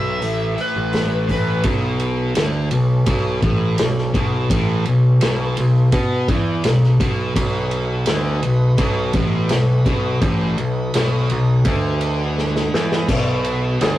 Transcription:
Already playing: B1 B2 D#3 F#3 B3 F#4 B4 E5
0.19 A1 A2 E3 A3 C#4 E4 A4, open hi-hat
0.23 A3
0.55 A2 E3 A3, open hi-hat
0.61 B4
0.76 A1
0.92 A2 E3 A3, snare, open hi-hat
1.28 A1 A2 E3 A3 B4, kick, open hi-hat
1.63 B1 B2, kick, ride
2.00 ride
2.35 D2 D3, snare, ride
2.71 B1 B2, ride
3.06 B1 B2, kick, ride
3.42 A1 A2, kick, ride
3.78 B1 B2, snare, ride
3.98 snare
4.13 B1 B2, kick, ride
4.50 A1 A2, kick, ride
4.85 B1 B2, ride
5.20 B1 B2, snare, ride
5.57 B1 B2, ride
5.92 B2 B3, kick, ride
6.28 E2 E3, kick, ride
6.64 B1 B2, snare, ride
6.84 snare
7.00 B1 B2, kick, ride
7.34 B1 B2 B3 F#4 B4 D#5, kick, ride
7.71 ride
8.06 D2 D3, snare, ride
8.42 B1 B2, ride
8.78 B1 B2, kick, ride
9.13 A1 A2, kick, ride
9.49 B1 B2, snare, ride
9.86 B1 B2, kick, ride
10.20 A1 A2 E4 G4 C5, kick, ride
10.44 F#4 B4 D#5
10.58 B1 B2, ride
10.94 B1 B2, snare, ride
11.30 B1 B2, ride
11.65 D2 D3, kick, ride
12.01 ride
12.38 snare
12.56 snare
12.74 E2 E3, snare
12.92 snare
13.08 B1 B2 B3 F#4 B4 D#5, kick, crash
13.44 ride
13.81 D2 D3, snare, ride

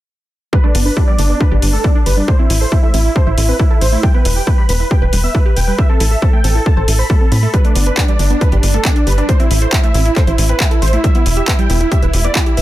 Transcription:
0.53 G3 B4, kick
0.64 A3 D4
0.75 G1 B3 D4, open hi-hat
0.86 D4 B4
0.97 D4 G4, kick
1.08 G3 D5
1.19 G1 A3 D4, open hi-hat
1.29 B3 D4
1.40 D4 B4, kick
1.51 G1 D4 G4
1.62 G1 G3 D4, open hi-hat
1.73 A3 A4
1.84 B3 D4, kick
1.95 D4
2.06 G1 G4 B4, open hi-hat
2.17 G3 D4
2.28 A3 C5, kick
2.39 C4 E4
2.50 A1 E4, open hi-hat
2.61 A4 C5
2.72 E4 C5, kick
2.83 A3 E5
2.94 A1 C4 E4, open hi-hat
3.05 E4
3.16 A4 C5, kick
3.27 A1 E4 C5
3.38 A1 A3 E4, open hi-hat
3.49 C4 B4
3.59 E4, kick
3.70 E4 A4
3.81 A1 C5, open hi-hat
3.92 A3 E4
4.03 G3 G5, kick
4.14 B3 B4
4.25 E1 E4 B4, open hi-hat
4.36 G4 G5
4.47 B4, kick
4.58 G3 B5
4.69 E1 B3 B4, open hi-hat
4.80 E4 B4
4.91 G4 G5, kick
5.02 E1 B4
5.13 E1 G3 B4, open hi-hat
5.24 B3 E5
5.35 E4 B4, kick
5.46 G4 B4
5.56 E1 B4 G5, open hi-hat
5.67 G3 B4
5.78 A3 E5, kick
5.89 C4 A4
6.00 A1 E4 A4, open hi-hat
6.11 A4 E5
6.22 A4 C5, kick
6.33 A3 G5
6.44 A1 C4 A4, open hi-hat
6.55 E4 A4
6.66 A4 A5, kick
6.77 A1 A4 C5
6.88 A1 E4 A4, open hi-hat
6.99 C5 B5
7.10 A3 A4, kick
7.21 C4 A4
7.32 A2 C4 B5, open hi-hat
7.43 A3 A4
7.54 G3 B4, kick, closed hi-hat
7.65 A3 D4, closed hi-hat
7.75 G1 B3 D4, open hi-hat
7.86 D4 B4, closed hi-hat
7.97 D4 G4, kick, clap, closed hi-hat
8.08 G3 D5, closed hi-hat
8.19 G1 A3 D4, open hi-hat
8.30 B3 D4, closed hi-hat
8.41 D4 B4, kick, closed hi-hat
8.52 G1 D4 G4, closed hi-hat
8.63 G1 G3 D4, open hi-hat
8.74 A3 A4, closed hi-hat
8.85 B3 D4, kick, clap, closed hi-hat
8.96 D4, closed hi-hat
9.07 G1 G4 B4, open hi-hat
9.12 closed hi-hat
9.18 G3 D4, closed hi-hat
9.29 A3 C5, kick, closed hi-hat
9.40 C4 E4, closed hi-hat
9.51 A1 E4, open hi-hat
9.62 A4 C5, closed hi-hat
9.73 E4 C5, kick, clap, closed hi-hat
9.83 A3 E5, closed hi-hat
9.94 A1 C4 E4, open hi-hat
10.05 E4, closed hi-hat
10.16 A4 C5, kick, clap, closed hi-hat
10.27 A1 E4 C5, closed hi-hat
10.38 A1 A3 E4, open hi-hat
10.49 C4 B4, closed hi-hat
10.60 E4, kick, clap, closed hi-hat
10.71 E4 A4, closed hi-hat
10.82 A1 C5, open hi-hat
10.88 closed hi-hat
10.93 A3 E4, closed hi-hat
11.04 G3 E5, kick, closed hi-hat
11.15 B3 E4, closed hi-hat
11.26 E1 E4, open hi-hat
11.37 G4 E5, closed hi-hat
11.48 E4 B4, kick, clap, closed hi-hat
11.59 G3 G5, closed hi-hat
11.70 E1 B3 E4, open hi-hat
11.81 E4, closed hi-hat
11.91 G4 E5, kick, closed hi-hat
12.02 E1 E4 B4, closed hi-hat
12.13 E1 G3 E4, open hi-hat
12.24 B3 D5, closed hi-hat
12.35 E4, kick, clap, closed hi-hat
12.46 E4 G4, closed hi-hat
12.57 E1 B4 E5, open hi-hat

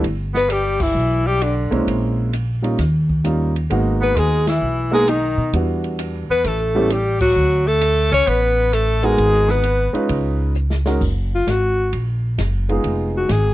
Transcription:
0.04 G1, kick, ride
0.34 B3 B4, snare
0.49 G3 G4, hi-hat pedal, ride
0.80 E3 E4, kick, crash
0.94 B1
1.27 G3 G4
1.41 D3 D4, hi-hat pedal, ride
1.71 B1 G#3 A#3 C4 C#4 E4, ride
1.87 A#1, kick, ride
2.33 hi-hat pedal, ride
2.62 G3 A#3 C#4 D#4 F4, ride
2.79 D#2, kick, snare, ride
3.09 kick
3.24 G3 A#3 C#4 D#4 F4, hi-hat pedal, ride
3.56 ride
3.70 G#1 G#3 A#3 B3 D#4 F#4, kick, ride
4.01 B3 B4
4.15 D#2 G#3 G#4, hi-hat pedal, ride
4.47 E3 E4, snare, ride
4.61 B1
4.91 G#3 A#3 B3 D#4 G#4, snare
5.08 D#3 D#4, hi-hat pedal, ride
5.37 B2
5.53 E2 G3 B3 D4 E4 F#4, kick, ride
5.84 ride
5.99 hi-hat pedal, ride
6.29 E2 B3 B4
6.44 A1 A3 A4, kick, ride
6.75 G3 B3 C#4 E4 G4
6.90 G3 G4, hi-hat pedal, ride
7.20 F#3 F#4, kick, crash
7.36 D2
7.67 A3 A4
7.81 hi-hat pedal, ride
8.11 C#2 C#4 C#5, ride
8.27 A1 B3 B4, kick, ride
8.73 A3 A4, hi-hat pedal, ride
9.03 G#3 B3 D#4 F#4 G#4 A#4, ride
9.18 G#1, kick, ride
9.34 snare
9.48 B3 B4, snare
9.64 hi-hat pedal, ride
9.93 G#3 C#4 D#4 F4 B4, ride
10.09 C#2, kick, ride
10.55 hi-hat pedal
10.70 snare
10.85 G#3 C#4 D#4 F#4 A#4, snare
11.01 F#1, kick, crash
11.35 F4
11.47 G#1 F#4, kick, snare, hi-hat pedal, ride
11.92 A#1, kick, ride
12.38 F#1, kick, snare, hi-hat pedal, ride
12.69 G#3 B3 D#4 F4 G#4, ride
12.84 F1, kick, ride
13.17 F#4
13.29 G#1 G#4, kick, snare, hi-hat pedal, ride

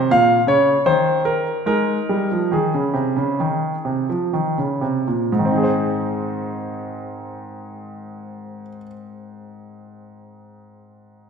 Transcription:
Already playing: C5
0.11 A#2 F5
0.47 C#3 C#5
0.86 D#3 C5
1.25 A#4
1.66 G#3 D#4 A#4
2.09 G3
2.32 F3
2.52 D#3 G#4
2.74 C#3
2.94 C3
3.16 C#3
3.40 D#3
3.85 C3
4.09 F3
4.33 D#3
4.58 C#3
4.81 C3
5.08 A#2
5.32 G#2
5.39 D#3
5.45 C4
5.51 D#4
5.57 G#4
5.63 C5

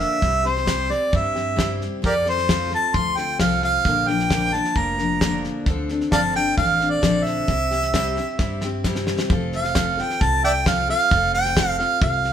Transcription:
Already playing: A#2 D3 F3 A#3 D4 A#4
0.00 E5
0.21 C2 C3 G3 C4 E4 G4, kick, snare
0.43 C4 E4 G4 C5, snare
0.56 snare
0.65 C3 G3 C4 E4 G4, kick, snare, hi-hat pedal
0.89 C4 E4 G4 D5, snare
1.12 G2 G3 C4 E4 G4 E5, kick, snare
1.35 C4 E4 G4, snare
1.56 C3 G3 C4 E4 G4, kick, snare, hi-hat pedal
1.81 snare
2.02 F2 F3 C4 F4 G4 A4 A#4 D5, kick, snare
2.25 C4 F4 A4, snare
2.29 C5
2.38 snare
2.48 F3 C4 F4 A4, kick, snare, hi-hat pedal
2.70 C4 F4 A4, snare
2.75 A5
2.94 D2 F3 C4 F4 A4 C6, kick, snare
3.17 C4 F4 A4 G5, snare
3.39 C2 F3 C4 F4 A4 F5, kick, snare, hi-hat pedal
3.62 F5, snare
3.85 A#1 A#2 D3 F3 A#3 D4 A#4, kick, snare
4.07 F3 A#3 D4 A#4 G5, snare
4.19 snare
4.30 A#2 D3 F3 A#3 D4 A#4, kick, snare, hi-hat pedal
4.53 F3 A#3 D4 A#4 A5, snare
4.64 snare
4.75 F1 F3 A#3 D4 A#4 A#5, kick, snare
4.98 F3 A#3 D4 A#4, snare
5.21 A#2 D3 F3 A#3 D4 A#4, kick, snare, hi-hat pedal
5.44 snare
5.66 D2 D3 F3 C4 D4 A4, kick, snare
5.89 C4 D4 A4, snare
6.01 snare
6.12 G1 D3 F3 C4 D4 A4 D5 F5 A5, kick, snare, hi-hat pedal
6.35 C4 D4 A4 G5, snare
6.57 A1 F3 C4 D4 A4 F5, kick, snare
6.80 C4 D4 A4, snare
6.90 D5
7.01 A#1 D3 F3 C4 D4 A4, kick, snare, hi-hat pedal
7.24 E5, snare
7.47 C2 C3 G3 C4 E4 G4, kick, snare
7.71 C4 E4 G4, snare
7.82 snare
7.94 C3 G3 C4 E4 G4, kick, snare, hi-hat pedal
8.17 C4 E4 G4, snare
8.39 G2 G3 C4 E4 G4, kick, snare
8.61 E4 G4, snare
8.66 C4
8.84 C3 G3 C4 E4 G4, kick, snare, hi-hat pedal
8.95 snare
9.07 snare
9.19 snare
9.30 F1 F3 C4 F4 A4, kick, snare
9.52 F5, snare
9.64 snare
9.74 F3 C4 F4 A4, kick, snare, hi-hat pedal
9.97 C4 F4 A4 G5, snare
10.10 snare
10.21 C2 A5, kick, snare
10.44 D5 E5 G5, snare
10.66 F3 C4 F4 A4 F5, kick, snare, hi-hat pedal
10.89 C4 F4 A4 F5, snare
11.11 F1 F3 C4 F4 A4, kick, snare
11.34 G5, snare
11.45 snare
11.57 F3 C4 F4 A4, kick, snare, hi-hat pedal
11.78 C4 F4 A4 F5, snare
12.01 C2 F5, kick, snare
12.24 snare

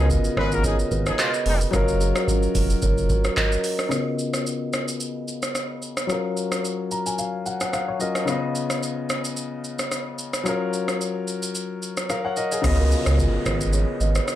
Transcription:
Already playing: C#2 C#3 B3 F4 D#5
0.10 F4 G#4, kick, shaker
0.24 shaker
0.37 G#1 G#3 F4 A#4 B4 C#5, kick, cross-stick
0.52 A#3 F#4 A#4, shaker
0.64 F3 D#4 G#4 C#5, kick, shaker
0.79 shaker
0.91 G#1 G#4 B4, kick, shaker
1.06 F3 D#4 G#4, cross-stick, shaker
1.19 B2 G#3 F4 B4 D#5, cross-stick, clap, shaker
1.34 shaker
1.46 F1 B2 G#3 D#4, open hi-hat
1.61 shaker
1.71 F#1 F#3 C#4 F4 A#4 C#5, kick, cross-stick, shaker
1.76 A#4
1.88 shaker
2.01 F4 G#4, shaker
2.16 F#4 A#4, cross-stick, shaker
2.28 C#4 F#4, kick, shaker
2.42 shaker
2.55 F1 A#4 C#5, kick, open hi-hat, shaker
2.70 shaker
2.82 F#1 A#4 C#5, kick, shaker
2.98 shaker
3.10 F#4 A#4, kick, shaker
3.24 cross-stick, shaker
3.37 A#4 D#5, kick, cross-stick, clap, shaker
3.52 shaker
3.64 open hi-hat, shaker
3.79 cross-stick, shaker
3.89 C#3 B3 F4, cross-stick, shaker
4.19 shaker
4.34 cross-stick, shaker
4.47 shaker
4.73 cross-stick, shaker
4.88 shaker
5.00 shaker
5.28 shaker
5.42 cross-stick, shaker
5.55 cross-stick, shaker
5.82 shaker
5.97 cross-stick, shaker
6.07 F#3 C#4 F4, cross-stick, shaker
6.12 A#4
6.37 shaker
6.52 cross-stick, shaker
6.65 shaker
6.91 A#5, shaker
7.06 G#5, shaker
7.18 F5, shaker
7.46 F#5, shaker
7.61 F#5, cross-stick, shaker
7.73 F5, cross-stick, shaker
7.88 C#5
7.99 F#3 C#4 F4 A#4 D#5, shaker
8.15 cross-stick, shaker
8.25 C#3 B3 F4, cross-stick, shaker
8.30 D#5
8.55 shaker
8.70 cross-stick, shaker
8.83 shaker
9.09 cross-stick, shaker
9.24 shaker
9.37 shaker
9.64 shaker
9.79 cross-stick, shaker
9.92 cross-stick, shaker
10.18 shaker
10.33 cross-stick, shaker
10.44 F#3 C#4 F4, cross-stick, shaker
10.49 A#4
10.73 shaker
10.88 cross-stick, shaker
11.01 shaker
11.28 shaker
11.43 shaker
11.55 shaker
11.82 shaker
11.97 cross-stick, shaker
12.10 A#4 F5, cross-stick, shaker
12.25 C#5 F#5
12.37 A#4 D#5, shaker
12.52 G#4 C#5, shaker
12.62 C#2 C#3 B3 F4, kick, cross-stick, crash, downlifter, shaker
12.67 D#5
12.80 F#4 A#4
12.91 F4 G#4, shaker
13.06 C#2, cross-stick, shaker
13.19 F4 G#4, kick, shaker
13.46 G#1 G#4 B4, kick, cross-stick, shaker
13.61 shaker
13.73 G#4 C#5, shaker
14.00 G#1 B4 D#5, shaker
14.15 G#4 B4, cross-stick, shaker
14.28 cross-stick, shaker

